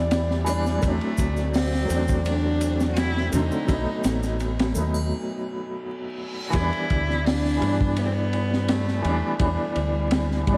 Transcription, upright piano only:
0, 0, Header, 1, 2, 480
1, 0, Start_track
1, 0, Key_signature, 1, "minor"
1, 0, Tempo, 714286
1, 557, Time_signature, 4, 2, 24, 8
1, 7106, End_track
2, 0, Start_track
2, 0, Title_t, "Upright piano"
2, 0, Program_c, 0, 0
2, 0, Control_c, 0, 64, 127
2, 0, Note_on_c, 0, 52, 73
2, 0, Note_on_c, 0, 55, 66
2, 0, Note_on_c, 0, 59, 63
2, 0, Note_on_c, 0, 62, 80
2, 274, Note_off_c, 0, 52, 0
2, 285, Note_off_c, 0, 55, 0
2, 297, Note_off_c, 0, 59, 0
2, 299, Note_on_c, 0, 52, 88
2, 307, Note_off_c, 0, 62, 0
2, 310, Note_on_c, 0, 55, 81
2, 321, Note_on_c, 0, 59, 78
2, 331, Note_on_c, 0, 62, 98
2, 520, Note_off_c, 0, 52, 0
2, 525, Note_on_c, 0, 54, 78
2, 526, Note_off_c, 0, 55, 0
2, 531, Note_off_c, 0, 59, 0
2, 537, Note_off_c, 0, 62, 0
2, 546, Note_on_c, 0, 57, 70
2, 567, Control_c, 0, 64, 0
2, 568, Note_on_c, 0, 60, 69
2, 591, Note_on_c, 0, 62, 89
2, 693, Control_c, 0, 64, 127
2, 1233, Note_off_c, 0, 54, 0
2, 1243, Note_on_c, 0, 54, 74
2, 1244, Note_off_c, 0, 57, 0
2, 1255, Note_off_c, 0, 60, 0
2, 1264, Note_on_c, 0, 57, 71
2, 1266, Note_off_c, 0, 62, 0
2, 1287, Note_on_c, 0, 60, 67
2, 1308, Note_on_c, 0, 62, 79
2, 2193, Note_off_c, 0, 54, 0
2, 2203, Note_off_c, 0, 57, 0
2, 2215, Note_off_c, 0, 60, 0
2, 2218, Note_on_c, 0, 54, 82
2, 2225, Note_off_c, 0, 62, 0
2, 2230, Note_on_c, 0, 57, 79
2, 2240, Note_on_c, 0, 60, 84
2, 2253, Note_on_c, 0, 50, 95
2, 2437, Note_off_c, 0, 54, 0
2, 2446, Note_off_c, 0, 57, 0
2, 2447, Note_on_c, 0, 54, 80
2, 2451, Note_off_c, 0, 60, 0
2, 2457, Note_off_c, 0, 50, 0
2, 2468, Note_on_c, 0, 57, 78
2, 2486, Control_c, 0, 64, 0
2, 2491, Note_on_c, 0, 59, 74
2, 2511, Note_on_c, 0, 63, 87
2, 2592, Control_c, 0, 64, 127
2, 3155, Note_off_c, 0, 54, 0
2, 3165, Note_off_c, 0, 57, 0
2, 3167, Note_on_c, 0, 54, 72
2, 3177, Note_off_c, 0, 59, 0
2, 3187, Note_off_c, 0, 63, 0
2, 3189, Note_on_c, 0, 57, 63
2, 3210, Note_on_c, 0, 59, 66
2, 3231, Note_on_c, 0, 63, 75
2, 3422, Note_off_c, 0, 54, 0
2, 3433, Note_off_c, 0, 57, 0
2, 3443, Note_off_c, 0, 59, 0
2, 3454, Note_off_c, 0, 63, 0
2, 4369, Note_on_c, 0, 52, 84
2, 4390, Note_on_c, 0, 55, 70
2, 4406, Control_c, 0, 64, 0
2, 4413, Note_on_c, 0, 59, 70
2, 4433, Note_on_c, 0, 62, 82
2, 4533, Control_c, 0, 64, 127
2, 5076, Note_off_c, 0, 52, 0
2, 5086, Note_off_c, 0, 55, 0
2, 5087, Note_on_c, 0, 52, 73
2, 5097, Note_off_c, 0, 59, 0
2, 5108, Note_off_c, 0, 62, 0
2, 5111, Note_on_c, 0, 55, 68
2, 5131, Note_on_c, 0, 59, 69
2, 5153, Note_on_c, 0, 62, 78
2, 6035, Note_off_c, 0, 52, 0
2, 6047, Note_off_c, 0, 55, 0
2, 6056, Note_off_c, 0, 59, 0
2, 6064, Note_on_c, 0, 52, 90
2, 6068, Note_off_c, 0, 62, 0
2, 6075, Note_on_c, 0, 55, 80
2, 6086, Note_on_c, 0, 59, 82
2, 6096, Note_on_c, 0, 62, 100
2, 6279, Note_off_c, 0, 52, 0
2, 6289, Note_off_c, 0, 55, 0
2, 6289, Note_on_c, 0, 52, 78
2, 6294, Note_off_c, 0, 59, 0
2, 6299, Note_off_c, 0, 62, 0
2, 6311, Note_on_c, 0, 55, 68
2, 6333, Note_on_c, 0, 59, 76
2, 6355, Note_on_c, 0, 62, 86
2, 6996, Note_off_c, 0, 52, 0
2, 7007, Note_off_c, 0, 55, 0
2, 7011, Note_on_c, 0, 52, 73
2, 7018, Note_off_c, 0, 59, 0
2, 7028, Note_off_c, 0, 62, 0
2, 7033, Note_on_c, 0, 55, 66
2, 7053, Note_on_c, 0, 59, 69
2, 7074, Note_on_c, 0, 62, 80
2, 7106, Note_off_c, 0, 52, 0
2, 7106, Note_off_c, 0, 55, 0
2, 7106, Note_off_c, 0, 59, 0
2, 7106, Note_off_c, 0, 62, 0
2, 7106, End_track
0, 0, End_of_file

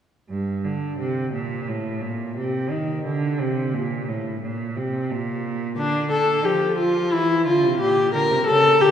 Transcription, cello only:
0, 0, Header, 1, 2, 480
1, 0, Start_track
1, 0, Key_signature, -2, "minor"
1, 0, Tempo, 689655
1, 205, Time_signature, 4, 2, 24, 8
1, 2601, Tempo, 676437
1, 6272, End_track
2, 0, Start_track
2, 0, Title_t, "Cello"
2, 0, Program_c, 0, 42
2, 205, Note_on_c, 0, 43, 65
2, 447, Note_on_c, 0, 50, 59
2, 457, Note_off_c, 0, 43, 0
2, 683, Note_off_c, 0, 50, 0
2, 687, Note_on_c, 0, 48, 62
2, 919, Note_off_c, 0, 48, 0
2, 923, Note_on_c, 0, 46, 57
2, 1166, Note_on_c, 0, 45, 63
2, 1176, Note_off_c, 0, 46, 0
2, 1398, Note_on_c, 0, 46, 60
2, 1408, Note_off_c, 0, 45, 0
2, 1639, Note_off_c, 0, 46, 0
2, 1644, Note_on_c, 0, 48, 66
2, 1883, Note_on_c, 0, 51, 65
2, 1893, Note_off_c, 0, 48, 0
2, 2120, Note_off_c, 0, 51, 0
2, 2124, Note_on_c, 0, 50, 68
2, 2364, Note_on_c, 0, 48, 63
2, 2375, Note_off_c, 0, 50, 0
2, 2599, Note_on_c, 0, 46, 62
2, 2610, Note_off_c, 0, 48, 0
2, 2842, Note_on_c, 0, 45, 63
2, 2853, Note_off_c, 0, 46, 0
2, 3078, Note_off_c, 0, 45, 0
2, 3083, Note_on_c, 0, 46, 60
2, 3328, Note_on_c, 0, 48, 67
2, 3339, Note_off_c, 0, 46, 0
2, 3568, Note_on_c, 0, 46, 68
2, 3578, Note_off_c, 0, 48, 0
2, 4048, Note_off_c, 0, 46, 0
2, 4052, Note_on_c, 0, 50, 63
2, 4524, Note_on_c, 0, 53, 60
2, 4534, Note_off_c, 0, 50, 0
2, 5004, Note_on_c, 0, 52, 61
2, 5014, Note_off_c, 0, 53, 0
2, 5243, Note_on_c, 0, 50, 63
2, 5254, Note_off_c, 0, 52, 0
2, 5365, Note_on_c, 0, 48, 58
2, 5376, Note_off_c, 0, 50, 0
2, 5477, Note_off_c, 0, 48, 0
2, 5482, Note_on_c, 0, 46, 66
2, 5716, Note_off_c, 0, 46, 0
2, 5721, Note_on_c, 0, 50, 65
2, 5769, Note_off_c, 0, 50, 0
2, 5844, Note_on_c, 0, 48, 61
2, 5891, Note_off_c, 0, 48, 0
2, 5960, Note_on_c, 0, 49, 68
2, 6196, Note_off_c, 0, 49, 0
2, 6204, Note_on_c, 0, 50, 60
2, 6272, Note_off_c, 0, 50, 0
2, 6272, End_track
0, 0, End_of_file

